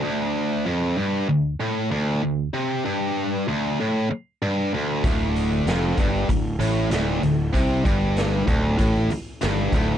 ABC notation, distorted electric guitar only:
X:1
M:4/4
L:1/8
Q:1/4=96
K:Dm
V:1 name="Distorted electric guitar" clef=bass
D,,2 F,, G,, D,, A,, D,, D,, | C, G,,2 D,, A,, z G,, D,, | D,,2 F,, G,, D,, A,, D,, D,, | C, G,,2 D,, A,, z G,, D,, |]